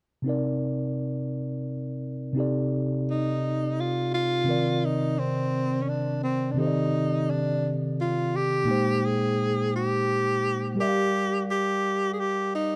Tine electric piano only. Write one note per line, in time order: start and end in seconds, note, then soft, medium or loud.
0.22 2.30 C3 medium
0.22 2.31 C4 medium
0.22 2.32 D#4 soft
0.28 2.33 A#4 soft
0.28 2.34 D5 medium
2.33 4.41 C3 medium
2.33 4.41 C4 medium
2.33 4.42 D#4 soft
2.37 4.43 G4 soft
2.37 4.43 A4 medium
2.37 4.44 D5 medium
4.44 6.51 C3 medium
4.44 6.53 D#3 soft
4.44 6.52 C4 soft
4.49 6.54 A#4 medium
4.49 6.55 D5 medium
6.54 8.62 C3 medium
6.54 8.63 D#3 medium
6.54 8.62 C4 soft
6.54 8.64 G4 soft
6.59 8.64 A4 soft
6.59 6.65 C5 soft
6.67 8.68 D5 medium
8.64 10.72 A#2 soft
8.64 10.73 A#3 soft
8.64 10.73 D#4 soft
8.68 10.75 G#3 soft
8.68 10.75 C5 medium
8.68 10.74 G5 soft
10.75 12.76 G3 medium
10.75 12.76 G4 medium
10.75 12.76 A#4 soft
10.80 12.76 D5 medium
10.80 10.86 E5 medium